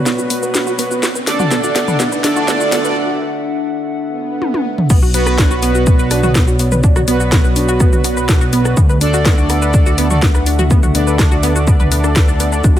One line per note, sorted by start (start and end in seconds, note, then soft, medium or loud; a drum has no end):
0.00 0.99 B3 medium
0.00 1.02 B3 medium
0.00 0.99 F#4 medium
0.00 1.02 F#4 medium
0.00 1.02 B4 medium
0.00 0.99 C#5 medium
0.00 0.99 D5 medium
0.00 riser medium
0.06 0.15 B3 loud
0.06 snare medium
0.06 shaker medium
0.18 0.27 F#4 medium
0.18 shaker soft
0.30 0.39 B3 medium
0.30 open hi-hat loud
0.30 shaker medium
0.43 0.51 B4 medium
0.43 shaker soft
0.55 0.66 D4 medium
0.55 snare medium
0.55 shaker medium
0.67 0.72 F#4 loud
0.67 shaker soft
0.79 0.88 B3 loud
0.79 open hi-hat medium
0.79 shaker medium
0.91 1.00 F#4 medium
0.91 shaker soft
1.03 1.12 B3 medium
1.03 4.86 D4 medium
1.03 4.86 A4 medium
1.03 4.86 E5 medium
1.03 4.86 F#5 medium
1.03 snare medium
1.03 shaker medium
1.15 1.24 B4 medium
1.15 shaker soft
1.27 1.39 D4 medium
1.27 1.98 D4 medium
1.27 1.98 A4 medium
1.27 1.98 D5 loud
1.27 snare medium
1.27 open hi-hat loud
1.27 shaker medium
1.40 1.45 F#4 medium
1.40 mid tom medium
1.40 shaker soft
1.51 1.60 B3 loud
1.51 snare medium
1.51 shaker medium
1.64 1.72 F#4 medium
1.64 shaker soft
1.76 1.84 B3 medium
1.76 snare medium
1.76 open hi-hat loud
1.76 shaker medium
1.88 1.96 B4 medium
1.88 mid tom medium
1.88 shaker soft
2.00 2.09 B3 medium
2.00 snare medium
2.00 shaker medium
2.12 2.21 B4 medium
2.12 shaker soft
2.24 2.36 D4 medium
2.24 2.95 D4 medium
2.24 2.95 A4 medium
2.24 2.95 D5 loud
2.24 snare medium
2.24 open hi-hat loud
2.24 shaker medium
2.36 2.41 F#4 medium
2.36 shaker soft
2.48 2.57 B3 loud
2.48 snare medium
2.48 shaker medium
2.60 2.69 F#4 medium
2.60 shaker soft
2.72 2.81 B3 medium
2.72 snare medium
2.72 open hi-hat loud
2.72 shaker medium
2.85 2.93 B4 medium
2.85 shaker soft
3.93 swell medium
4.42 high tom medium
4.54 high tom medium
4.78 mid tom medium
4.90 8.75 B1 medium
4.90 8.73 B3 medium
4.90 4.99 B3 loud
4.90 8.73 F#4 medium
4.90 8.73 C#5 medium
4.90 8.73 D5 medium
4.90 kick loud
4.90 crash loud
4.90 shaker medium
5.02 5.11 F#4 medium
5.02 shaker soft
5.14 5.23 B3 medium
5.14 6.20 B3 loud
5.14 6.21 F#4 medium
5.14 6.20 B4 loud
5.14 open hi-hat loud
5.14 shaker medium
5.27 5.35 B4 medium
5.27 cross-stick soft
5.27 shaker soft
5.38 5.50 D4 medium
5.38 kick loud
5.38 snare loud
5.38 shaker medium
5.51 5.56 F#4 loud
5.51 shaker soft
5.63 5.72 B3 loud
5.63 open hi-hat medium
5.63 shaker medium
5.75 5.83 F#4 medium
5.75 shaker soft
5.87 5.96 B3 medium
5.87 kick loud
5.87 shaker medium
5.99 6.08 B4 medium
5.99 shaker soft
6.11 6.23 D4 medium
6.11 cross-stick soft
6.11 open hi-hat loud
6.11 shaker medium
6.23 6.32 B3 medium
6.23 6.28 F#4 loud
6.23 6.32 F#4 medium
6.23 6.32 B4 medium
6.23 mid tom medium
6.23 shaker soft
6.35 6.44 B3 loud
6.35 kick loud
6.35 snare loud
6.35 shaker medium
6.48 6.56 F#4 medium
6.48 shaker soft
6.59 6.68 B3 medium
6.59 open hi-hat medium
6.59 shaker medium
6.72 6.80 B4 medium
6.72 mid tom medium
6.72 shaker soft
6.84 6.95 D4 medium
6.84 kick loud
6.84 shaker medium
6.96 7.01 F#4 loud
6.96 cross-stick medium
6.96 mid tom medium
6.96 shaker soft
7.08 7.17 B3 loud
7.08 8.76 B3 medium
7.08 8.76 F#4 medium
7.08 8.76 B4 medium
7.08 open hi-hat loud
7.08 shaker medium
7.20 7.29 F#4 medium
7.20 shaker soft
7.32 7.41 B3 medium
7.32 kick loud
7.32 snare loud
7.32 mid tom medium
7.32 shaker medium
7.44 7.53 B4 medium
7.44 shaker soft
7.56 7.68 D4 medium
7.56 open hi-hat loud
7.56 shaker medium
7.68 7.74 F#4 loud
7.68 shaker soft
7.80 7.89 B3 loud
7.80 kick loud
7.80 cross-stick soft
7.80 shaker medium
7.93 8.01 F#4 medium
7.93 mid tom medium
7.93 shaker soft
8.04 8.13 B3 medium
8.04 open hi-hat loud
8.04 shaker medium
8.17 8.25 B4 medium
8.17 shaker soft
8.29 8.41 D4 medium
8.29 kick loud
8.29 snare loud
8.29 shaker medium
8.41 8.46 F#4 loud
8.41 shaker soft
8.53 8.62 B3 loud
8.53 open hi-hat loud
8.53 shaker medium
8.65 8.74 F#4 medium
8.65 cross-stick soft
8.65 shaker soft
8.77 12.62 D2 medium
8.77 8.86 B3 medium
8.77 12.60 D4 medium
8.77 12.60 A4 medium
8.77 12.60 E5 medium
8.77 12.60 F#5 medium
8.77 kick loud
8.77 shaker medium
8.89 8.98 B4 medium
8.89 shaker soft
9.01 9.13 D4 medium
9.01 10.08 D4 loud
9.01 10.08 A4 medium
9.01 10.08 D5 loud
9.01 open hi-hat loud
9.01 shaker medium
9.14 9.19 F#4 loud
9.14 shaker soft
9.25 9.34 B3 loud
9.25 kick loud
9.25 snare loud
9.25 shaker medium
9.38 9.46 F#4 medium
9.38 shaker soft
9.50 9.59 B3 medium
9.50 cross-stick medium
9.50 open hi-hat loud
9.50 shaker medium
9.62 9.71 B4 medium
9.62 shaker soft
9.74 9.86 D4 medium
9.74 kick loud
9.74 shaker medium
9.86 9.91 F#4 loud
9.86 shaker soft
9.98 10.07 B3 loud
9.98 open hi-hat loud
9.98 shaker medium
10.10 10.19 D4 medium
10.10 10.19 F#4 medium
10.10 10.19 A4 medium
10.10 10.20 D5 medium
10.10 mid tom medium
10.10 shaker soft
10.22 10.31 B3 medium
10.22 kick loud
10.22 snare loud
10.22 shaker medium
10.35 10.43 B4 medium
10.35 cross-stick medium
10.35 shaker soft
10.46 10.58 D4 medium
10.46 open hi-hat loud
10.46 shaker medium
10.59 10.64 F#4 loud
10.59 mid tom medium
10.59 shaker soft
10.71 10.80 B3 loud
10.71 kick loud
10.71 shaker medium
10.83 10.92 F#4 medium
10.83 mid tom medium
10.83 shaker soft
10.95 11.04 B3 medium
10.95 12.63 D4 medium
10.95 12.63 A4 medium
10.95 12.63 D5 medium
10.95 open hi-hat loud
10.95 shaker medium
11.07 11.16 B4 medium
11.07 shaker soft
11.19 11.31 D4 medium
11.19 kick loud
11.19 cross-stick medium
11.19 snare loud
11.19 mid tom medium
11.19 shaker medium
11.31 11.37 F#4 loud
11.31 shaker soft
11.43 11.52 B3 loud
11.43 open hi-hat medium
11.43 shaker medium
11.56 11.64 F#4 medium
11.56 shaker soft
11.67 11.76 B3 medium
11.67 kick loud
11.67 shaker medium
11.80 11.88 B4 medium
11.80 mid tom medium
11.80 shaker soft
11.92 12.01 B3 medium
11.92 open hi-hat loud
11.92 shaker medium
12.04 12.09 D4 medium
12.04 cross-stick medium
12.04 shaker soft
12.16 12.25 B4 medium
12.16 kick loud
12.16 snare loud
12.16 shaker medium
12.28 12.39 D4 medium
12.28 shaker soft
12.40 12.49 B3 medium
12.40 open hi-hat loud
12.40 shaker medium
12.52 12.58 D4 medium
12.52 shaker soft
12.64 12.80 B1 medium
12.64 12.80 B3 medium
12.64 12.76 D4 medium
12.64 12.80 F#4 medium
12.64 12.80 C#5 medium
12.64 12.80 D5 medium
12.64 kick loud
12.64 shaker medium